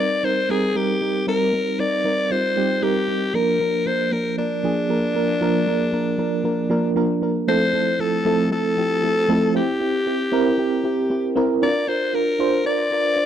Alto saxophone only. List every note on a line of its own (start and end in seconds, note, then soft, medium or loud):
0.00 0.26 D5 loud
0.25 0.52 C5 loud
0.51 0.78 G#4 loud
0.77 1.28 G4 loud
1.28 1.81 A#4 loud
1.80 2.33 D5 loud
2.32 2.85 C5 loud
2.83 3.36 G4 loud
3.35 3.88 A#4 loud
3.87 4.14 C5 loud
4.13 4.38 A#4 loud
4.38 6.93 D4 medium
7.49 8.02 C5 loud
8.01 8.52 A4 loud
8.53 9.52 A4 loud
9.56 11.33 G4 loud
11.63 11.90 D5 loud
11.89 12.16 C5 loud
12.15 12.66 A#4 loud
12.66 13.26 D5 loud